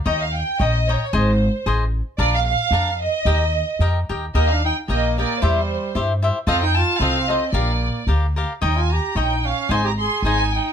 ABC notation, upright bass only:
X:1
M:2/4
L:1/8
Q:"Swing" 1/4=112
K:Eb
V:1 name="Upright bass" clef=bass
E,,2 B,,,2 | A,,,2 =A,,,2 | B,,,2 F,,2 | E,,2 F,, E,, |
E,,2 B,,,2 | =E,,2 G,,2 | F,,2 C,,2 | B,,,2 D,,2 |
E,,2 B,,,2 | A,,,2 A,,,2 |]